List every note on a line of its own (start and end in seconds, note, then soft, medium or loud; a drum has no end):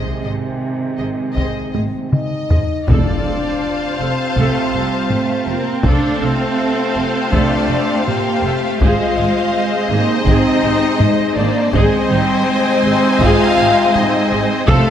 0.00 2.13 C3 medium
0.00 2.51 D#3 medium
0.00 2.52 G#3 soft
0.00 2.12 C4 medium
0.00 0.22 G#4 medium
0.00 0.21 C5 medium
0.00 0.21 D#5 medium
0.23 0.31 G#1 soft
0.23 0.31 G#4 soft
0.23 0.31 C5 soft
0.23 0.32 D#5 soft
0.98 1.07 G#1 soft
0.98 1.08 G#4 soft
0.98 1.08 C5 soft
0.98 1.06 D#5 soft
1.35 1.44 G#1 medium
1.35 1.72 G#4 soft
1.35 1.73 C5 medium
1.35 1.71 D#5 medium
1.35 taiko medium
1.73 1.83 G#1 soft
1.73 1.82 G#4 soft
1.73 1.85 C5 soft
1.73 1.81 D#5 soft
1.73 taiko high medium
2.11 2.84 D#4 medium
2.11 2.89 D#5 medium
2.11 2.84 D#5 medium
2.11 taiko mid medium
2.48 2.60 G#1 soft
2.48 2.59 G#4 soft
2.48 2.60 C5 soft
2.48 2.56 D#5 soft
2.48 taiko low medium
2.87 2.97 F1 medium
2.87 3.96 F2 medium
2.87 5.79 C3 medium
2.87 5.80 C4 medium
2.87 5.81 C4 medium
2.87 4.00 D4 medium
2.87 5.81 F4 medium
2.87 3.23 A4 medium
2.87 5.80 C5 medium
2.87 4.01 D5 medium
2.87 3.99 D5 medium
2.87 5.80 F5 medium
2.87 5.80 A5 medium
2.87 taiko medium
2.87 impact medium
3.26 3.34 F1 soft
3.26 3.35 A4 soft
3.99 4.09 F1 soft
3.99 5.44 C4 medium
3.99 4.09 A4 soft
3.99 5.49 C5 medium
3.99 5.48 C5 medium
4.36 4.46 F1 medium
4.36 4.71 A3 medium
4.36 4.72 A4 medium
4.36 taiko medium
4.74 4.83 F1 soft
4.74 5.10 G3 medium
4.74 4.85 A4 medium
5.10 5.47 A3 medium
5.10 taiko low-mid medium
5.46 5.56 F1 medium
5.46 5.84 A#3 medium
5.46 5.84 C4 medium
5.46 5.57 F4 soft
5.46 5.83 A#4 medium
5.83 5.94 F1 medium
5.83 8.77 C3 medium
5.83 7.33 A3 loud
5.83 8.77 C4 medium
5.83 6.21 D4 medium
5.83 8.78 F4 medium
5.83 7.29 A4 medium
5.83 8.77 A4 medium
5.83 7.33 A4 medium
5.83 6.19 A4 medium
5.83 8.77 C5 medium
5.83 8.78 C5 medium
5.83 8.77 F5 medium
5.83 taiko loud
6.21 6.31 F1 medium
6.21 7.33 C4 medium
6.21 6.30 A4 soft
6.96 7.04 F1 medium
6.96 7.05 A4 medium
7.30 7.42 F1 medium
7.30 8.06 A3 medium
7.30 8.06 D4 loud
7.30 7.67 A4 medium
7.30 8.07 D5 medium
7.30 taiko medium
7.70 7.78 F1 medium
7.70 7.79 A4 medium
8.06 8.44 A#3 medium
8.06 8.80 G4 medium
8.06 8.81 G5 medium
8.06 8.55 G5 medium
8.06 taiko low-mid medium
8.43 8.51 F1 medium
8.43 8.81 A3 medium
8.43 8.54 A4 medium
8.79 8.89 G#1 medium
8.79 11.56 C3 medium
8.79 11.56 G#3 medium
8.79 9.53 G#3 medium
8.79 11.70 C4 medium
8.79 9.72 F4 medium
8.79 11.74 G#4 medium
8.79 9.16 G#4 medium
8.79 11.69 C5 medium
8.79 11.70 C5 medium
8.79 11.71 D#5 medium
8.79 9.90 F5 medium
8.79 9.92 F5 medium
8.79 taiko loud
9.17 9.25 G#1 medium
9.17 9.26 G#4 soft
9.54 9.90 G#3 medium
9.88 9.98 G#1 medium
9.88 10.27 A#3 medium
9.88 11.33 D#4 loud
9.88 10.00 G#4 medium
9.88 11.33 D#5 loud
9.88 11.37 D#5 medium
10.26 10.34 G#1 loud
10.26 10.99 C4 medium
10.26 10.62 G#4 medium
10.26 taiko medium
10.63 10.71 G#1 medium
10.63 10.73 G#4 medium
11.00 11.37 G#3 medium
11.00 taiko low-mid medium
11.35 11.45 G#1 medium
11.35 11.74 A#3 medium
11.35 11.73 D4 loud
11.35 11.47 G#4 medium
11.35 11.72 D5 medium
11.35 11.73 D5 medium
11.72 11.82 G#1 medium
11.72 14.65 C3 loud
11.72 12.10 G#3 medium
11.72 13.18 C4 loud
11.72 14.64 C4 loud
11.72 14.65 D#4 loud
11.72 12.09 G#4 medium
11.72 13.23 C5 loud
11.72 14.64 C5 loud
11.72 13.22 C5 loud
11.72 14.66 C5 medium
11.72 14.64 D#5 medium
11.72 14.65 G#5 loud
11.72 taiko loud
12.10 12.18 G#1 medium
12.10 12.47 G3 medium
12.10 12.20 D#4 medium
12.47 14.69 G#3 medium
12.84 12.92 G#1 medium
12.84 12.93 G#4 medium
13.20 13.28 G#1 loud
13.20 13.95 F4 loud
13.20 13.57 G#4 medium
13.20 13.95 F5 loud
13.20 13.96 F5 loud
13.20 taiko medium
13.58 13.66 G#1 medium
13.58 13.68 G#4 medium
13.94 14.32 D#4 loud
13.94 14.32 D#5 medium
13.94 taiko low-mid medium
14.31 14.39 G#1 medium
14.31 14.40 G#4 medium
14.66 14.76 F1 loud
14.66 14.90 F2 loud
14.66 14.90 C3 loud
14.66 14.90 A3 loud
14.66 14.90 C4 loud
14.66 14.90 F4 loud
14.66 14.90 A4 loud
14.66 14.90 C5 medium
14.66 14.90 F5 loud
14.66 taiko loud
14.70 14.90 C4 loud
14.70 14.90 A4 loud
14.70 14.90 C5 loud